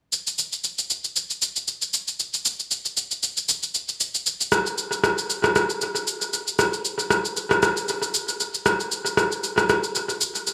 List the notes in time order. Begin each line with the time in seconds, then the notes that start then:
0.13 shaker
0.27 shaker
0.38 shaker
0.53 shaker
0.64 shaker
0.79 shaker
0.90 shaker
1.04 shaker
1.16 shaker
1.30 shaker
1.42 shaker
1.56 shaker
1.68 shaker
1.82 shaker
1.94 shaker
2.08 shaker
2.20 shaker
2.34 shaker
2.45 shaker
2.60 shaker
2.71 shaker
2.86 shaker
2.97 shaker
3.11 shaker
3.23 shaker
3.37 shaker
3.49 shaker
3.63 shaker
3.75 shaker
3.89 shaker
4.00 shaker
4.15 shaker
4.26 shaker
4.41 shaker
4.52 cross-stick, shaker
4.66 shaker
4.78 shaker
4.92 shaker
5.04 cross-stick, shaker
5.18 shaker
5.30 shaker
5.44 cross-stick, shaker
5.56 cross-stick, shaker
5.70 shaker
5.81 shaker
5.96 shaker
6.07 shaker
6.22 shaker
6.33 shaker
6.48 shaker
6.59 cross-stick, shaker
6.73 shaker
6.85 shaker
6.99 shaker
7.10 cross-stick, shaker
7.25 shaker
7.37 shaker
7.51 cross-stick, shaker
7.63 cross-stick, shaker
7.77 shaker
7.88 shaker
8.03 shaker
8.14 shaker
8.28 shaker
8.40 shaker
8.55 shaker
8.66 cross-stick, shaker
8.80 shaker
8.92 shaker
9.06 shaker
9.17 cross-stick, shaker
9.32 shaker
9.44 shaker
9.58 cross-stick, shaker
9.69 cross-stick, shaker
9.84 shaker
9.95 shaker
10.09 shaker
10.21 shaker
10.35 shaker
10.47 shaker